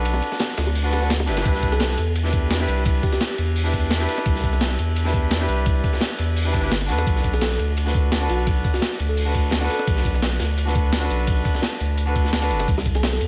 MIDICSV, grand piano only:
0, 0, Header, 1, 2, 480
1, 0, Start_track
1, 0, Tempo, 350877
1, 67, Time_signature, 4, 2, 24, 8
1, 18162, End_track
2, 0, Start_track
2, 0, Title_t, "Grand piano"
2, 0, Program_c, 0, 0
2, 0, Note_on_c, 0, 62, 97
2, 0, Note_on_c, 0, 66, 90
2, 0, Note_on_c, 0, 69, 93
2, 0, Note_on_c, 0, 71, 107
2, 1105, Note_off_c, 0, 62, 0
2, 1118, Note_off_c, 0, 66, 0
2, 1131, Note_off_c, 0, 69, 0
2, 1133, Note_on_c, 0, 62, 80
2, 1145, Note_off_c, 0, 71, 0
2, 1147, Note_on_c, 0, 66, 76
2, 1160, Note_on_c, 0, 69, 74
2, 1174, Note_on_c, 0, 71, 90
2, 1225, Note_off_c, 0, 62, 0
2, 1239, Note_off_c, 0, 66, 0
2, 1245, Note_on_c, 0, 62, 94
2, 1247, Note_off_c, 0, 69, 0
2, 1255, Note_off_c, 0, 71, 0
2, 1260, Note_on_c, 0, 66, 87
2, 1273, Note_on_c, 0, 69, 85
2, 1286, Note_on_c, 0, 71, 102
2, 1353, Note_off_c, 0, 62, 0
2, 1361, Note_off_c, 0, 66, 0
2, 1367, Note_off_c, 0, 69, 0
2, 1374, Note_off_c, 0, 71, 0
2, 1375, Note_on_c, 0, 62, 89
2, 1389, Note_on_c, 0, 66, 83
2, 1402, Note_on_c, 0, 69, 84
2, 1416, Note_on_c, 0, 71, 99
2, 1472, Note_off_c, 0, 62, 0
2, 1479, Note_off_c, 0, 66, 0
2, 1486, Note_off_c, 0, 69, 0
2, 1492, Note_off_c, 0, 71, 0
2, 1727, Note_on_c, 0, 62, 94
2, 1741, Note_on_c, 0, 64, 86
2, 1755, Note_on_c, 0, 67, 85
2, 1769, Note_on_c, 0, 71, 103
2, 1927, Note_off_c, 0, 62, 0
2, 1947, Note_on_c, 0, 62, 105
2, 1954, Note_off_c, 0, 64, 0
2, 1975, Note_on_c, 0, 64, 94
2, 1981, Note_off_c, 0, 67, 0
2, 2001, Note_on_c, 0, 67, 93
2, 2008, Note_off_c, 0, 71, 0
2, 2028, Note_on_c, 0, 71, 117
2, 2687, Note_off_c, 0, 62, 0
2, 2701, Note_off_c, 0, 64, 0
2, 2714, Note_off_c, 0, 67, 0
2, 2728, Note_off_c, 0, 71, 0
2, 3054, Note_on_c, 0, 62, 81
2, 3068, Note_on_c, 0, 64, 73
2, 3082, Note_on_c, 0, 67, 72
2, 3094, Note_on_c, 0, 71, 89
2, 3493, Note_off_c, 0, 62, 0
2, 3513, Note_on_c, 0, 62, 99
2, 3520, Note_off_c, 0, 64, 0
2, 3528, Note_off_c, 0, 67, 0
2, 3534, Note_off_c, 0, 71, 0
2, 3541, Note_on_c, 0, 64, 91
2, 3567, Note_on_c, 0, 67, 89
2, 3594, Note_on_c, 0, 71, 109
2, 4944, Note_off_c, 0, 62, 0
2, 4957, Note_off_c, 0, 64, 0
2, 4970, Note_off_c, 0, 67, 0
2, 4974, Note_on_c, 0, 62, 83
2, 4984, Note_off_c, 0, 71, 0
2, 4988, Note_on_c, 0, 64, 75
2, 5002, Note_on_c, 0, 67, 75
2, 5014, Note_on_c, 0, 71, 86
2, 5414, Note_off_c, 0, 62, 0
2, 5434, Note_on_c, 0, 62, 100
2, 5441, Note_off_c, 0, 64, 0
2, 5448, Note_off_c, 0, 67, 0
2, 5454, Note_off_c, 0, 71, 0
2, 5462, Note_on_c, 0, 64, 92
2, 5489, Note_on_c, 0, 67, 91
2, 5517, Note_on_c, 0, 71, 114
2, 6864, Note_off_c, 0, 62, 0
2, 6878, Note_off_c, 0, 64, 0
2, 6892, Note_off_c, 0, 67, 0
2, 6895, Note_on_c, 0, 62, 81
2, 6905, Note_off_c, 0, 71, 0
2, 6909, Note_on_c, 0, 64, 78
2, 6921, Note_on_c, 0, 67, 75
2, 6936, Note_on_c, 0, 71, 91
2, 7333, Note_off_c, 0, 62, 0
2, 7354, Note_on_c, 0, 62, 100
2, 7360, Note_off_c, 0, 64, 0
2, 7368, Note_off_c, 0, 67, 0
2, 7375, Note_off_c, 0, 71, 0
2, 7381, Note_on_c, 0, 64, 91
2, 7407, Note_on_c, 0, 67, 92
2, 7436, Note_on_c, 0, 71, 110
2, 8784, Note_off_c, 0, 62, 0
2, 8797, Note_off_c, 0, 64, 0
2, 8811, Note_off_c, 0, 67, 0
2, 8813, Note_on_c, 0, 62, 78
2, 8825, Note_off_c, 0, 71, 0
2, 8828, Note_on_c, 0, 64, 74
2, 8841, Note_on_c, 0, 67, 73
2, 8854, Note_on_c, 0, 71, 93
2, 8905, Note_off_c, 0, 62, 0
2, 8919, Note_off_c, 0, 64, 0
2, 8925, Note_on_c, 0, 62, 94
2, 8928, Note_off_c, 0, 67, 0
2, 8934, Note_off_c, 0, 71, 0
2, 8940, Note_on_c, 0, 64, 88
2, 8953, Note_on_c, 0, 67, 85
2, 8966, Note_on_c, 0, 71, 101
2, 9032, Note_off_c, 0, 62, 0
2, 9041, Note_off_c, 0, 64, 0
2, 9047, Note_off_c, 0, 67, 0
2, 9053, Note_on_c, 0, 62, 92
2, 9054, Note_off_c, 0, 71, 0
2, 9066, Note_on_c, 0, 64, 84
2, 9079, Note_on_c, 0, 67, 85
2, 9093, Note_on_c, 0, 71, 103
2, 9151, Note_off_c, 0, 62, 0
2, 9157, Note_off_c, 0, 64, 0
2, 9164, Note_off_c, 0, 67, 0
2, 9171, Note_off_c, 0, 71, 0
2, 9385, Note_on_c, 0, 62, 91
2, 9412, Note_on_c, 0, 66, 90
2, 9439, Note_on_c, 0, 69, 90
2, 9466, Note_on_c, 0, 71, 106
2, 10703, Note_off_c, 0, 62, 0
2, 10717, Note_off_c, 0, 66, 0
2, 10730, Note_off_c, 0, 69, 0
2, 10734, Note_on_c, 0, 62, 82
2, 10744, Note_off_c, 0, 71, 0
2, 10747, Note_on_c, 0, 66, 76
2, 10760, Note_on_c, 0, 69, 74
2, 10774, Note_on_c, 0, 71, 90
2, 11172, Note_off_c, 0, 62, 0
2, 11193, Note_on_c, 0, 62, 100
2, 11199, Note_off_c, 0, 66, 0
2, 11207, Note_off_c, 0, 69, 0
2, 11214, Note_off_c, 0, 71, 0
2, 11219, Note_on_c, 0, 66, 89
2, 11247, Note_on_c, 0, 69, 88
2, 11273, Note_on_c, 0, 71, 106
2, 12623, Note_off_c, 0, 62, 0
2, 12637, Note_off_c, 0, 66, 0
2, 12650, Note_off_c, 0, 69, 0
2, 12654, Note_on_c, 0, 62, 82
2, 12664, Note_off_c, 0, 71, 0
2, 12667, Note_on_c, 0, 66, 77
2, 12681, Note_on_c, 0, 69, 74
2, 12695, Note_on_c, 0, 71, 89
2, 13092, Note_off_c, 0, 62, 0
2, 13113, Note_on_c, 0, 62, 97
2, 13120, Note_off_c, 0, 66, 0
2, 13127, Note_off_c, 0, 69, 0
2, 13134, Note_off_c, 0, 71, 0
2, 13140, Note_on_c, 0, 66, 94
2, 13167, Note_on_c, 0, 69, 93
2, 13194, Note_on_c, 0, 71, 109
2, 14543, Note_off_c, 0, 62, 0
2, 14557, Note_off_c, 0, 66, 0
2, 14570, Note_off_c, 0, 69, 0
2, 14574, Note_on_c, 0, 62, 84
2, 14584, Note_off_c, 0, 71, 0
2, 14587, Note_on_c, 0, 66, 74
2, 14601, Note_on_c, 0, 69, 75
2, 14614, Note_on_c, 0, 71, 91
2, 15011, Note_off_c, 0, 62, 0
2, 15032, Note_on_c, 0, 62, 102
2, 15038, Note_off_c, 0, 66, 0
2, 15047, Note_off_c, 0, 69, 0
2, 15054, Note_off_c, 0, 71, 0
2, 15058, Note_on_c, 0, 66, 90
2, 15086, Note_on_c, 0, 69, 90
2, 15113, Note_on_c, 0, 71, 110
2, 16463, Note_off_c, 0, 62, 0
2, 16476, Note_off_c, 0, 66, 0
2, 16490, Note_off_c, 0, 69, 0
2, 16495, Note_on_c, 0, 62, 83
2, 16504, Note_off_c, 0, 71, 0
2, 16508, Note_on_c, 0, 66, 73
2, 16522, Note_on_c, 0, 69, 75
2, 16536, Note_on_c, 0, 71, 93
2, 16953, Note_off_c, 0, 62, 0
2, 16961, Note_off_c, 0, 66, 0
2, 16968, Note_off_c, 0, 69, 0
2, 16973, Note_on_c, 0, 62, 98
2, 16975, Note_off_c, 0, 71, 0
2, 16988, Note_on_c, 0, 66, 92
2, 17001, Note_on_c, 0, 69, 92
2, 17015, Note_on_c, 0, 71, 110
2, 17323, Note_off_c, 0, 62, 0
2, 17330, Note_off_c, 0, 66, 0
2, 17337, Note_off_c, 0, 69, 0
2, 17344, Note_off_c, 0, 71, 0
2, 18162, End_track
0, 0, End_of_file